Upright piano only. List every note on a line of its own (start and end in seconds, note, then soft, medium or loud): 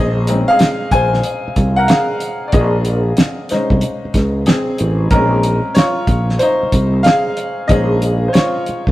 0.00 0.29 C4 medium
0.00 0.29 C#4 medium
0.00 0.29 D#4 medium
0.00 0.50 G#4 medium
0.00 1.79 A#4 medium
0.00 0.94 C5 medium
0.00 0.49 D#5 loud
0.28 2.82 G#3 medium
0.28 2.82 C4 medium
0.28 2.82 C#4 medium
0.28 2.82 D#4 medium
0.48 0.90 G#4 medium
0.48 0.89 F5 loud
0.92 1.74 C5 medium
0.92 1.79 G#5 loud
1.76 1.89 A#4 medium
1.76 1.89 F#5 loud
1.88 2.45 G#4 medium
1.88 2.49 F5 medium
2.48 2.53 D5 medium
2.53 3.47 G#4 medium
2.53 3.46 D#5 medium
3.51 5.11 G#3 medium
3.51 5.12 C#4 medium
3.51 5.12 D#4 medium
3.51 6.04 C5 medium
4.47 5.08 C4 medium
4.47 5.07 G#4 medium
5.11 5.58 G#3 medium
5.11 5.58 C4 soft
5.11 5.73 C#4 medium
5.11 5.59 D#4 medium
5.11 5.77 A#4 medium
5.75 6.37 F4 medium
5.75 6.42 C#5 loud
6.39 7.02 D#4 medium
6.39 7.06 C5 medium
7.03 7.66 G#4 medium
7.03 7.64 F5 loud
7.68 8.62 G#3 medium
7.68 8.63 C#4 medium
7.68 8.63 D#4 medium
7.68 8.26 G#4 medium
7.68 8.27 C5 medium
7.68 8.30 D#5 loud
8.28 8.34 C5 medium
8.33 8.92 F4 medium
8.33 8.92 C#5 medium